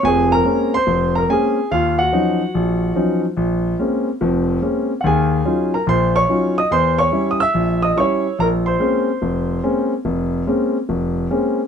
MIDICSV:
0, 0, Header, 1, 2, 480
1, 0, Start_track
1, 0, Key_signature, -5, "minor"
1, 0, Tempo, 417827
1, 37, Time_signature, 4, 2, 24, 8
1, 13410, End_track
2, 0, Start_track
2, 0, Title_t, "Grand piano"
2, 0, Program_c, 0, 0
2, 34, Note_on_c, 0, 41, 69
2, 37, Note_on_c, 0, 29, 73
2, 55, Note_on_c, 0, 80, 99
2, 86, Note_on_c, 0, 68, 73
2, 350, Note_off_c, 0, 68, 0
2, 364, Note_off_c, 0, 80, 0
2, 368, Note_on_c, 0, 82, 101
2, 395, Note_on_c, 0, 70, 71
2, 449, Note_off_c, 0, 41, 0
2, 450, Note_off_c, 0, 29, 0
2, 511, Note_on_c, 0, 56, 47
2, 516, Note_on_c, 0, 58, 48
2, 521, Note_on_c, 0, 60, 43
2, 523, Note_on_c, 0, 61, 57
2, 817, Note_off_c, 0, 70, 0
2, 839, Note_off_c, 0, 56, 0
2, 842, Note_off_c, 0, 58, 0
2, 844, Note_off_c, 0, 60, 0
2, 845, Note_off_c, 0, 61, 0
2, 850, Note_off_c, 0, 82, 0
2, 853, Note_on_c, 0, 84, 98
2, 877, Note_on_c, 0, 72, 74
2, 997, Note_on_c, 0, 29, 71
2, 1298, Note_off_c, 0, 72, 0
2, 1326, Note_on_c, 0, 82, 83
2, 1332, Note_off_c, 0, 84, 0
2, 1355, Note_on_c, 0, 70, 69
2, 1410, Note_off_c, 0, 29, 0
2, 1481, Note_on_c, 0, 56, 51
2, 1481, Note_on_c, 0, 60, 43
2, 1483, Note_on_c, 0, 58, 45
2, 1487, Note_on_c, 0, 61, 56
2, 1489, Note_off_c, 0, 70, 0
2, 1489, Note_off_c, 0, 82, 0
2, 1494, Note_on_c, 0, 80, 86
2, 1518, Note_on_c, 0, 68, 67
2, 1803, Note_off_c, 0, 56, 0
2, 1804, Note_off_c, 0, 58, 0
2, 1804, Note_off_c, 0, 60, 0
2, 1807, Note_off_c, 0, 61, 0
2, 1930, Note_off_c, 0, 80, 0
2, 1943, Note_off_c, 0, 68, 0
2, 1967, Note_on_c, 0, 39, 67
2, 1971, Note_on_c, 0, 77, 86
2, 1994, Note_on_c, 0, 65, 66
2, 2263, Note_off_c, 0, 65, 0
2, 2280, Note_off_c, 0, 77, 0
2, 2281, Note_on_c, 0, 78, 86
2, 2304, Note_on_c, 0, 66, 62
2, 2375, Note_off_c, 0, 39, 0
2, 2440, Note_on_c, 0, 53, 51
2, 2445, Note_on_c, 0, 54, 46
2, 2447, Note_on_c, 0, 61, 44
2, 2451, Note_on_c, 0, 63, 59
2, 2762, Note_off_c, 0, 53, 0
2, 2765, Note_off_c, 0, 54, 0
2, 2766, Note_off_c, 0, 61, 0
2, 2768, Note_off_c, 0, 63, 0
2, 2924, Note_on_c, 0, 34, 67
2, 3332, Note_off_c, 0, 34, 0
2, 3394, Note_on_c, 0, 53, 51
2, 3397, Note_on_c, 0, 61, 48
2, 3398, Note_on_c, 0, 54, 44
2, 3403, Note_on_c, 0, 63, 53
2, 3664, Note_off_c, 0, 78, 0
2, 3675, Note_off_c, 0, 66, 0
2, 3719, Note_off_c, 0, 53, 0
2, 3720, Note_off_c, 0, 61, 0
2, 3721, Note_off_c, 0, 54, 0
2, 3723, Note_off_c, 0, 63, 0
2, 3868, Note_on_c, 0, 34, 68
2, 4283, Note_off_c, 0, 34, 0
2, 4355, Note_on_c, 0, 56, 50
2, 4357, Note_on_c, 0, 58, 47
2, 4360, Note_on_c, 0, 60, 46
2, 4362, Note_on_c, 0, 61, 54
2, 4679, Note_off_c, 0, 56, 0
2, 4680, Note_off_c, 0, 58, 0
2, 4681, Note_off_c, 0, 60, 0
2, 4682, Note_off_c, 0, 61, 0
2, 4836, Note_on_c, 0, 41, 73
2, 4837, Note_on_c, 0, 29, 68
2, 5247, Note_off_c, 0, 41, 0
2, 5248, Note_off_c, 0, 29, 0
2, 5303, Note_on_c, 0, 56, 47
2, 5308, Note_on_c, 0, 58, 46
2, 5313, Note_on_c, 0, 60, 43
2, 5314, Note_on_c, 0, 61, 55
2, 5632, Note_off_c, 0, 56, 0
2, 5635, Note_off_c, 0, 58, 0
2, 5637, Note_off_c, 0, 60, 0
2, 5638, Note_off_c, 0, 61, 0
2, 5752, Note_on_c, 0, 78, 57
2, 5788, Note_on_c, 0, 51, 70
2, 5789, Note_on_c, 0, 39, 69
2, 5799, Note_off_c, 0, 78, 0
2, 5819, Note_on_c, 0, 80, 80
2, 5822, Note_on_c, 0, 68, 65
2, 6202, Note_off_c, 0, 51, 0
2, 6203, Note_off_c, 0, 39, 0
2, 6259, Note_on_c, 0, 54, 48
2, 6264, Note_on_c, 0, 61, 47
2, 6265, Note_on_c, 0, 63, 46
2, 6272, Note_on_c, 0, 65, 52
2, 6549, Note_off_c, 0, 68, 0
2, 6590, Note_off_c, 0, 54, 0
2, 6593, Note_off_c, 0, 61, 0
2, 6593, Note_off_c, 0, 63, 0
2, 6595, Note_on_c, 0, 82, 77
2, 6597, Note_off_c, 0, 65, 0
2, 6604, Note_on_c, 0, 70, 59
2, 6616, Note_off_c, 0, 80, 0
2, 6739, Note_on_c, 0, 34, 72
2, 6742, Note_on_c, 0, 46, 71
2, 6746, Note_off_c, 0, 82, 0
2, 6750, Note_off_c, 0, 70, 0
2, 6765, Note_on_c, 0, 84, 90
2, 6777, Note_on_c, 0, 72, 69
2, 7045, Note_off_c, 0, 84, 0
2, 7051, Note_off_c, 0, 72, 0
2, 7072, Note_on_c, 0, 85, 100
2, 7085, Note_on_c, 0, 73, 66
2, 7158, Note_off_c, 0, 34, 0
2, 7160, Note_off_c, 0, 46, 0
2, 7227, Note_on_c, 0, 54, 48
2, 7232, Note_on_c, 0, 61, 43
2, 7232, Note_on_c, 0, 63, 43
2, 7237, Note_on_c, 0, 65, 51
2, 7519, Note_off_c, 0, 73, 0
2, 7554, Note_off_c, 0, 54, 0
2, 7557, Note_off_c, 0, 61, 0
2, 7557, Note_off_c, 0, 63, 0
2, 7558, Note_on_c, 0, 87, 91
2, 7559, Note_off_c, 0, 65, 0
2, 7559, Note_off_c, 0, 85, 0
2, 7578, Note_on_c, 0, 75, 70
2, 7708, Note_on_c, 0, 40, 71
2, 7717, Note_off_c, 0, 75, 0
2, 7718, Note_on_c, 0, 84, 95
2, 7723, Note_off_c, 0, 87, 0
2, 7736, Note_on_c, 0, 72, 73
2, 8011, Note_off_c, 0, 72, 0
2, 8024, Note_on_c, 0, 85, 95
2, 8032, Note_off_c, 0, 84, 0
2, 8045, Note_on_c, 0, 73, 73
2, 8122, Note_off_c, 0, 40, 0
2, 8175, Note_on_c, 0, 55, 54
2, 8177, Note_on_c, 0, 61, 46
2, 8184, Note_on_c, 0, 64, 54
2, 8371, Note_off_c, 0, 85, 0
2, 8382, Note_off_c, 0, 73, 0
2, 8395, Note_on_c, 0, 87, 75
2, 8498, Note_off_c, 0, 87, 0
2, 8504, Note_on_c, 0, 88, 105
2, 8508, Note_off_c, 0, 55, 0
2, 8509, Note_off_c, 0, 61, 0
2, 8512, Note_off_c, 0, 64, 0
2, 8530, Note_on_c, 0, 76, 79
2, 8665, Note_on_c, 0, 34, 70
2, 8948, Note_off_c, 0, 88, 0
2, 8961, Note_off_c, 0, 76, 0
2, 8989, Note_on_c, 0, 87, 92
2, 9013, Note_on_c, 0, 75, 71
2, 9081, Note_off_c, 0, 34, 0
2, 9148, Note_on_c, 0, 55, 49
2, 9155, Note_off_c, 0, 75, 0
2, 9155, Note_on_c, 0, 61, 46
2, 9156, Note_on_c, 0, 64, 56
2, 9159, Note_off_c, 0, 87, 0
2, 9162, Note_on_c, 0, 85, 91
2, 9191, Note_on_c, 0, 73, 72
2, 9475, Note_off_c, 0, 55, 0
2, 9478, Note_off_c, 0, 61, 0
2, 9479, Note_off_c, 0, 64, 0
2, 9617, Note_off_c, 0, 73, 0
2, 9634, Note_on_c, 0, 34, 67
2, 9649, Note_off_c, 0, 85, 0
2, 9651, Note_on_c, 0, 82, 93
2, 9671, Note_on_c, 0, 70, 77
2, 9718, Note_off_c, 0, 82, 0
2, 9736, Note_off_c, 0, 70, 0
2, 9949, Note_on_c, 0, 84, 79
2, 9966, Note_on_c, 0, 72, 69
2, 10046, Note_off_c, 0, 34, 0
2, 10104, Note_on_c, 0, 56, 49
2, 10110, Note_on_c, 0, 58, 48
2, 10113, Note_on_c, 0, 60, 48
2, 10115, Note_on_c, 0, 61, 57
2, 10433, Note_off_c, 0, 56, 0
2, 10436, Note_off_c, 0, 58, 0
2, 10438, Note_off_c, 0, 60, 0
2, 10439, Note_off_c, 0, 61, 0
2, 10591, Note_on_c, 0, 29, 67
2, 11005, Note_off_c, 0, 29, 0
2, 11066, Note_on_c, 0, 56, 52
2, 11069, Note_on_c, 0, 58, 44
2, 11073, Note_on_c, 0, 60, 48
2, 11074, Note_on_c, 0, 61, 58
2, 11339, Note_off_c, 0, 84, 0
2, 11348, Note_off_c, 0, 72, 0
2, 11395, Note_off_c, 0, 56, 0
2, 11396, Note_off_c, 0, 58, 0
2, 11398, Note_off_c, 0, 60, 0
2, 11399, Note_off_c, 0, 61, 0
2, 11546, Note_on_c, 0, 29, 70
2, 11963, Note_off_c, 0, 29, 0
2, 12029, Note_on_c, 0, 56, 52
2, 12030, Note_on_c, 0, 58, 46
2, 12032, Note_on_c, 0, 60, 47
2, 12041, Note_on_c, 0, 61, 59
2, 12357, Note_off_c, 0, 56, 0
2, 12358, Note_off_c, 0, 58, 0
2, 12359, Note_off_c, 0, 60, 0
2, 12363, Note_off_c, 0, 61, 0
2, 12510, Note_on_c, 0, 29, 69
2, 12926, Note_off_c, 0, 29, 0
2, 12988, Note_on_c, 0, 58, 46
2, 12988, Note_on_c, 0, 60, 45
2, 12989, Note_on_c, 0, 56, 51
2, 12997, Note_on_c, 0, 61, 54
2, 13317, Note_off_c, 0, 58, 0
2, 13318, Note_off_c, 0, 56, 0
2, 13318, Note_off_c, 0, 60, 0
2, 13322, Note_off_c, 0, 61, 0
2, 13410, End_track
0, 0, End_of_file